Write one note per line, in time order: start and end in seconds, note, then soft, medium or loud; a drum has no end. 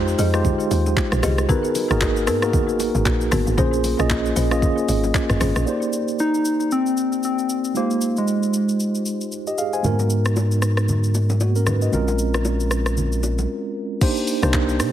0.00 0.15 F2 loud
0.00 0.34 G#3 medium
0.00 0.34 D#4 medium
0.00 0.34 F4 medium
0.00 0.35 G4 medium
0.00 0.35 C5 loud
0.08 shaker medium
0.19 0.55 F2 loud
0.19 0.29 G4 medium
0.19 0.30 G#4 medium
0.19 0.30 D#5 medium
0.19 open hi-hat medium
0.19 shaker loud
0.34 1.16 G#3 medium
0.34 1.17 D#4 medium
0.34 1.17 F4 medium
0.34 1.17 G4 medium
0.34 1.17 C5 loud
0.34 cross-stick loud
0.34 shaker medium
0.45 kick loud
0.45 low conga medium
0.45 shaker medium
0.60 shaker soft
0.71 0.94 D#2 medium
0.71 open hi-hat medium
0.71 high bongo medium
0.71 shaker medium
0.86 low bongo medium
0.86 shaker medium
0.97 kick loud
0.97 clap medium
0.97 high bongo medium
0.97 shaker medium
1.12 1.22 A#1 loud
1.12 cross-stick loud
1.12 shaker medium
1.23 1.46 C2 loud
1.23 1.34 G4 medium
1.23 1.34 G#4 medium
1.23 1.34 D#5 medium
1.23 cross-stick loud
1.23 open hi-hat medium
1.23 low bongo medium
1.23 low conga medium
1.23 shaker loud
1.38 cross-stick medium
1.38 shaker medium
1.49 1.98 B3 medium
1.49 1.81 D#4 medium
1.49 1.98 F#4 medium
1.49 1.82 F#4 medium
1.49 1.82 G#4 medium
1.49 1.81 A#4 medium
1.49 1.98 A#4 loud
1.49 1.82 B4 loud
1.49 kick loud
1.49 low conga medium
1.49 shaker medium
1.64 shaker medium
1.75 open hi-hat medium
1.75 low bongo medium
1.75 shaker loud
1.90 2.29 G#1 loud
1.90 2.31 A#3 medium
1.90 2.31 D#4 medium
1.90 2.31 F#4 medium
1.90 2.31 G#4 medium
1.90 2.31 A#4 loud
1.90 cross-stick loud
1.90 shaker medium
2.01 kick loud
2.01 clap loud
2.01 high bongo medium
2.01 shaker medium
2.17 shaker medium
2.27 2.55 G#2 loud
2.27 2.38 B3 medium
2.27 2.38 F#4 medium
2.27 2.38 A#4 medium
2.27 cross-stick loud
2.27 open hi-hat medium
2.27 shaker loud
2.42 3.25 A#3 medium
2.42 3.25 D#4 medium
2.42 3.26 F#4 medium
2.42 3.26 G#4 medium
2.42 3.26 A#4 loud
2.42 cross-stick loud
2.42 shaker medium
2.53 2.90 G#1 loud
2.53 kick loud
2.53 low conga medium
2.53 shaker medium
2.69 shaker medium
2.80 open hi-hat medium
2.80 high bongo medium
2.80 shaker medium
2.95 3.05 G#1 loud
2.95 low bongo medium
2.95 shaker medium
3.06 3.29 A#1 medium
3.06 kick loud
3.06 clap medium
3.06 high bongo medium
3.06 shaker medium
3.21 shaker medium
3.31 3.45 G#1 medium
3.31 3.42 B3 medium
3.31 3.43 F#4 medium
3.31 3.43 A#4 medium
3.31 cross-stick loud
3.31 open hi-hat medium
3.31 low bongo medium
3.31 low conga medium
3.31 shaker loud
3.47 3.57 G#1 medium
3.47 shaker medium
3.58 3.95 A#1 loud
3.58 3.90 A#3 medium
3.58 4.06 C#4 medium
3.58 3.90 C#4 medium
3.58 3.90 F4 medium
3.58 4.07 G#4 medium
3.58 3.91 G#4 medium
3.58 4.07 C5 loud
3.58 3.91 C5 loud
3.58 kick loud
3.58 low conga medium
3.58 shaker medium
3.73 shaker medium
3.84 open hi-hat medium
3.84 low bongo medium
3.84 shaker loud
3.99 4.32 A#1 loud
3.99 4.39 A#3 medium
3.99 4.39 C#4 medium
3.99 4.40 F4 medium
3.99 4.40 G#4 medium
3.99 4.40 D#5 loud
3.99 cross-stick medium
3.99 shaker medium
4.10 kick loud
4.10 clap loud
4.10 high bongo medium
4.10 shaker medium
4.25 shaker medium
4.36 4.73 A#1 loud
4.36 4.47 C#4 medium
4.36 4.47 G#4 medium
4.36 4.47 C5 medium
4.36 open hi-hat medium
4.36 shaker loud
4.51 5.34 A#3 medium
4.51 5.34 C#4 medium
4.51 5.34 F4 medium
4.51 5.34 G#4 medium
4.51 5.35 D#5 loud
4.51 cross-stick loud
4.51 shaker medium
4.62 kick loud
4.62 low conga medium
4.62 shaker medium
4.78 shaker medium
4.88 5.12 G#1 medium
4.88 open hi-hat medium
4.88 high bongo medium
4.88 shaker medium
5.04 low bongo medium
5.04 shaker medium
5.14 kick loud
5.14 clap medium
5.14 high bongo medium
5.14 shaker medium
5.30 5.39 G1 medium
5.30 cross-stick loud
5.30 mid tom medium
5.30 shaker medium
5.40 5.54 G#1 medium
5.40 5.51 C#4 medium
5.40 5.51 G#4 medium
5.40 5.51 C5 medium
5.40 cross-stick loud
5.40 open hi-hat medium
5.40 low bongo medium
5.40 low conga medium
5.40 shaker loud
5.56 5.65 A#1 medium
5.56 cross-stick medium
5.56 shaker medium
5.66 7.71 A#3 medium
5.66 7.72 D#4 medium
5.66 7.72 G4 medium
5.66 7.72 C5 medium
5.66 7.71 D5 medium
5.66 shaker medium
5.82 shaker soft
5.93 shaker medium
6.08 shaker medium
6.19 6.74 D#4 loud
6.19 shaker medium
6.34 shaker soft
6.45 shaker loud
6.60 shaker medium
6.71 7.24 C4 loud
6.71 shaker medium
6.86 shaker soft
6.97 shaker medium
7.12 shaker soft
7.23 7.73 C4 medium
7.23 shaker medium
7.38 shaker soft
7.49 shaker medium
7.64 shaker medium
7.74 9.80 G#3 medium
7.74 8.20 A#3 loud
7.74 9.80 D#4 medium
7.74 9.80 F4 medium
7.74 9.29 G4 medium
7.74 9.30 C5 medium
7.74 shaker medium
7.91 shaker soft
8.01 shaker medium
8.17 9.22 G#3 medium
8.17 shaker medium
8.28 shaker medium
8.43 shaker medium
8.54 shaker loud
8.69 shaker medium
8.80 shaker medium
8.95 shaker soft
9.06 shaker medium
9.21 shaker soft
9.32 shaker medium
9.47 9.58 G4 medium
9.47 9.58 D#5 medium
9.47 shaker soft
9.58 9.73 G#4 medium
9.58 9.72 F5 medium
9.58 shaker loud
9.73 9.98 C5 medium
9.73 9.98 G#5 medium
9.73 shaker medium
9.83 11.89 G#2 medium
9.83 11.62 G#3 medium
9.83 9.91 A#3 medium
9.83 11.38 D#4 medium
9.83 11.38 F#4 medium
9.83 11.38 A#4 medium
9.83 low conga medium
9.83 shaker medium
9.90 11.40 B3 medium
9.99 low bongo medium
9.99 shaker soft
10.10 shaker medium
10.25 cross-stick medium
10.25 shaker medium
10.36 high bongo medium
10.36 shaker medium
10.51 shaker soft
10.62 cross-stick medium
10.62 shaker loud
10.77 cross-stick medium
10.77 shaker medium
10.88 low conga medium
10.88 shaker medium
11.04 shaker soft
11.14 high bongo medium
11.14 shaker medium
11.30 low bongo medium
11.30 shaker soft
11.40 11.55 A#3 medium
11.40 11.55 F#4 medium
11.40 high bongo medium
11.40 shaker medium
11.56 11.67 C#4 medium
11.56 11.66 A#4 medium
11.56 shaker soft
11.67 11.82 D#4 medium
11.67 11.81 B4 medium
11.67 cross-stick medium
11.67 low bongo medium
11.67 low conga medium
11.67 shaker medium
11.82 12.07 F#4 soft
11.82 12.07 D#5 medium
11.82 shaker medium
11.92 13.46 A#1 medium
11.92 13.97 G#3 medium
11.92 13.97 C4 medium
11.92 13.98 C#4 medium
11.92 13.98 F4 medium
11.92 13.98 A#4 medium
11.92 low conga medium
11.92 shaker medium
12.08 low bongo medium
12.08 shaker soft
12.19 shaker loud
12.34 cross-stick medium
12.34 high bongo medium
12.34 shaker medium
12.45 high bongo medium
12.45 shaker medium
12.60 shaker medium
12.71 cross-stick medium
12.71 shaker loud
12.86 cross-stick medium
12.86 shaker medium
12.97 low conga medium
12.97 shaker medium
13.12 shaker soft
13.23 high bongo medium
13.23 shaker medium
13.38 low bongo medium
13.38 shaker soft
14.01 14.34 A#3 medium
14.01 14.34 D4 medium
14.01 14.34 D#4 medium
14.01 14.34 G4 medium
14.01 14.34 C5 medium
14.01 kick loud
14.01 crash loud
14.01 shaker medium
14.17 shaker medium
14.27 open hi-hat medium
14.27 shaker loud
14.43 14.81 C2 loud
14.43 14.83 A#3 medium
14.43 14.83 D4 medium
14.43 14.83 D#4 medium
14.43 14.83 G4 medium
14.43 14.83 C5 loud
14.43 cross-stick loud
14.43 shaker medium
14.54 kick loud
14.54 clap loud
14.54 shaker medium
14.69 shaker medium
14.80 14.92 C3 loud
14.80 cross-stick loud
14.80 open hi-hat medium
14.80 shaker loud